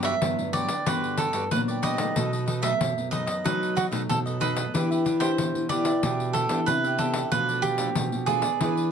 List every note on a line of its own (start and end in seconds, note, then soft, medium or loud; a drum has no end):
0.00 0.13 G2 medium
0.00 0.19 G2 medium
0.00 0.16 F#3 medium
0.00 0.16 B3 medium
0.00 0.17 D4 medium
0.00 0.14 F#4 medium
0.00 0.14 G4 medium
0.00 pandeiro medium
0.04 0.14 B4 medium
0.04 0.15 D5 medium
0.04 0.51 E5 medium
0.22 0.36 G2 medium
0.22 0.84 D3 soft
0.22 0.49 F#3 soft
0.22 0.49 B3 medium
0.22 0.50 D4 medium
0.22 pandeiro medium
0.39 0.67 G2 medium
0.39 pandeiro soft
0.53 0.73 F#3 medium
0.53 0.73 B3 soft
0.53 0.73 D4 medium
0.53 0.69 F#4 medium
0.53 0.69 G4 medium
0.53 0.68 B4 medium
0.53 0.87 D5 medium
0.53 0.67 D5 medium
0.53 pandeiro medium
0.68 0.86 G4 soft
0.68 0.85 B4 soft
0.68 0.85 D5 soft
0.68 pandeiro medium
0.86 1.48 G2 medium
0.86 1.28 D3 loud
0.86 1.47 B3 medium
0.86 1.47 D4 medium
0.86 1.16 F#4 medium
0.86 1.17 G4 medium
0.86 1.20 B4 medium
0.86 1.18 B4 medium
0.86 1.19 D5 medium
0.86 pandeiro medium
1.04 pandeiro soft
1.18 1.32 F#4 soft
1.18 1.33 G4 soft
1.18 1.49 A4 medium
1.18 1.33 B4 soft
1.18 1.33 D5 medium
1.18 pandeiro medium
1.33 1.48 G2 medium
1.33 1.43 F#4 medium
1.33 1.44 G4 medium
1.33 1.44 B4 medium
1.33 1.44 D5 medium
1.33 pandeiro medium
1.51 2.07 A#2 medium
1.51 2.13 D3 medium
1.51 1.79 F#3 medium
1.51 1.79 B3 soft
1.51 1.79 D4 medium
1.51 1.60 B4 medium
1.51 pandeiro medium
1.68 1.82 G4 soft
1.68 1.83 B4 soft
1.68 1.83 D5 soft
1.68 pandeiro soft
1.82 1.94 F#3 soft
1.82 1.95 B3 soft
1.82 1.95 D4 soft
1.82 1.98 F#4 medium
1.82 1.98 G4 medium
1.82 1.97 B4 medium
1.82 1.96 D5 medium
1.82 2.62 D#5 medium
1.82 pandeiro medium
1.97 2.42 F#3 medium
1.97 2.42 A3 medium
1.97 2.43 D#4 medium
1.97 2.14 G4 soft
1.97 2.14 B4 soft
1.97 2.13 D5 soft
1.97 pandeiro medium
2.16 2.77 B2 medium
2.16 2.71 B2 medium
2.16 2.31 D#4 medium
2.16 2.31 A4 medium
2.16 2.31 B4 medium
2.16 2.31 D#5 medium
2.16 pandeiro medium
2.33 2.46 A4 soft
2.33 2.46 B4 soft
2.33 2.47 D#5 soft
2.33 pandeiro soft
2.46 2.61 D#4 soft
2.46 2.61 A4 soft
2.46 2.61 B4 medium
2.46 2.62 D#5 medium
2.46 pandeiro soft
2.62 3.06 F#3 medium
2.62 3.07 A3 medium
2.62 2.72 D#4 medium
2.62 2.72 A4 medium
2.62 2.72 B4 medium
2.62 2.73 D#5 medium
2.62 3.11 E5 medium
2.62 pandeiro medium
2.81 3.42 F#2 medium
2.81 2.95 B2 medium
2.81 pandeiro medium
2.98 3.25 B2 medium
2.98 pandeiro soft
3.11 3.40 F#3 medium
3.11 3.40 A3 medium
3.11 3.27 D#4 medium
3.11 3.40 D#4 medium
3.11 3.27 A4 medium
3.11 3.27 B4 medium
3.11 3.45 D#5 medium
3.11 3.25 D#5 medium
3.11 pandeiro medium
3.27 3.44 A4 soft
3.27 3.43 B4 soft
3.27 3.43 D#5 medium
3.27 pandeiro medium
3.44 4.06 B2 medium
3.44 3.75 F#3 medium
3.44 3.86 F#3 loud
3.44 3.75 A3 medium
3.44 3.74 D#4 medium
3.44 3.76 D#4 medium
3.44 3.75 A4 medium
3.44 3.78 B4 medium
3.44 3.76 B4 medium
3.44 3.76 D#5 medium
3.44 pandeiro medium
3.63 pandeiro soft
3.75 3.90 D#4 soft
3.75 3.85 F#4 medium
3.75 3.90 A4 soft
3.75 3.91 B4 soft
3.75 3.91 D#5 medium
3.75 pandeiro medium
3.91 4.06 B2 medium
3.91 4.36 F#3 medium
3.91 4.36 A3 medium
3.91 4.01 D#4 medium
3.91 4.36 D#4 medium
3.91 4.02 A4 medium
3.91 4.02 B4 medium
3.91 4.02 D#5 medium
3.91 pandeiro medium
4.09 4.71 F#2 medium
4.09 4.64 B2 medium
4.09 4.18 A4 medium
4.09 pandeiro medium
4.26 4.40 A4 soft
4.26 4.40 B4 soft
4.26 4.40 D#5 soft
4.26 pandeiro soft
4.40 4.60 F#3 soft
4.40 4.60 A3 soft
4.40 4.56 D#4 medium
4.40 4.60 D#4 medium
4.40 4.56 A4 medium
4.40 5.24 B4 medium
4.40 4.55 B4 medium
4.40 4.54 D#5 medium
4.40 pandeiro medium
4.55 4.73 A4 soft
4.55 4.72 B4 soft
4.55 4.71 D#5 soft
4.55 pandeiro medium
4.74 5.35 E3 medium
4.74 5.29 E3 loud
4.74 5.04 B3 medium
4.74 4.89 D4 medium
4.74 5.04 D4 medium
4.74 4.89 G4 medium
4.74 5.05 G4 medium
4.74 4.90 B4 medium
4.74 4.89 E5 medium
4.74 pandeiro medium
4.91 5.04 G4 soft
4.91 5.05 B4 soft
4.91 5.05 E5 soft
4.91 pandeiro soft
5.05 5.19 D4 soft
5.05 5.20 G4 soft
5.05 5.20 B4 soft
5.05 5.21 E5 soft
5.05 pandeiro soft
5.20 5.30 D4 medium
5.20 5.65 D4 medium
5.20 5.31 G4 medium
5.20 5.65 G4 medium
5.20 5.31 B4 medium
5.20 5.69 C5 medium
5.20 5.31 E5 medium
5.20 pandeiro medium
5.38 6.00 B2 medium
5.38 5.52 E3 medium
5.38 pandeiro medium
5.55 5.82 E3 medium
5.55 pandeiro soft
5.69 5.90 B3 medium
5.69 5.85 D4 medium
5.69 5.90 D4 medium
5.69 5.85 G4 medium
5.69 5.90 G4 medium
5.69 5.84 B4 medium
5.69 6.31 D5 medium
5.69 5.84 E5 medium
5.69 pandeiro medium
5.85 6.02 G4 soft
5.85 6.01 B4 soft
5.85 6.01 E5 soft
5.85 pandeiro medium
6.03 6.44 B2 medium
6.03 6.65 E3 medium
6.03 6.47 B3 medium
6.03 6.33 D4 medium
6.03 6.47 D4 medium
6.03 6.34 G4 medium
6.03 6.47 G4 medium
6.03 6.34 B4 medium
6.03 6.35 E5 medium
6.03 pandeiro medium
6.20 pandeiro soft
6.33 6.48 D4 soft
6.33 6.49 G4 soft
6.33 6.68 A4 medium
6.33 6.49 B4 medium
6.33 6.49 E5 medium
6.33 pandeiro medium
6.49 6.64 E3 medium
6.49 6.94 B3 medium
6.49 6.59 D4 medium
6.49 6.94 D4 medium
6.49 6.60 G4 medium
6.49 6.94 G4 medium
6.49 6.60 B4 medium
6.49 6.60 E5 medium
6.49 pandeiro medium
6.66 7.22 C3 medium
6.66 7.00 B4 medium
6.66 pandeiro medium
6.84 6.97 G4 soft
6.84 6.98 B4 soft
6.84 6.99 E5 medium
6.84 pandeiro soft
6.98 7.27 B3 medium
6.98 7.14 D4 medium
6.98 7.27 D4 soft
6.98 7.14 G4 medium
6.98 7.27 G4 medium
6.98 7.29 A4 medium
6.98 7.14 B4 medium
6.98 7.13 E5 medium
6.98 pandeiro medium
7.13 7.31 G4 soft
7.13 7.30 B4 soft
7.13 7.30 E5 soft
7.13 pandeiro medium
7.32 7.93 B2 medium
7.32 7.87 B2 medium
7.32 7.75 F3 soft
7.32 7.75 A3 medium
7.32 7.76 D4 medium
7.32 7.47 F4 medium
7.32 7.47 A4 medium
7.32 7.65 B4 medium
7.32 7.47 B4 medium
7.32 7.48 D5 medium
7.32 pandeiro medium
7.49 7.63 A4 soft
7.49 7.64 B4 soft
7.49 7.63 D5 soft
7.49 pandeiro soft
7.62 7.78 F4 soft
7.62 8.30 G4 medium
7.62 7.78 A4 soft
7.62 7.78 B4 medium
7.62 7.79 D5 soft
7.62 pandeiro soft
7.78 8.23 F3 medium
7.78 8.23 A3 medium
7.78 8.23 D4 medium
7.78 7.89 F4 medium
7.78 7.89 A4 medium
7.78 7.89 B4 medium
7.78 7.89 D5 medium
7.78 pandeiro medium
7.95 8.10 B2 medium
7.95 8.58 B2 medium
7.95 pandeiro medium
8.12 8.41 B2 medium
8.12 pandeiro soft
8.26 8.47 F3 soft
8.26 8.48 A3 medium
8.26 8.48 D4 medium
8.26 8.43 F4 medium
8.26 8.88 G#4 medium
8.26 8.43 A4 medium
8.26 8.43 B4 medium
8.26 8.42 D5 medium
8.26 pandeiro medium
8.42 8.60 A4 soft
8.42 8.59 B4 soft
8.42 8.59 D5 medium
8.42 pandeiro medium
8.61 8.91 E3 medium
8.61 8.91 B3 medium
8.61 8.91 D4 medium
8.61 8.91 E4 medium
8.61 8.91 G#4 medium
8.61 8.91 B4 medium
8.61 8.91 D5 medium
8.61 pandeiro medium
8.77 pandeiro soft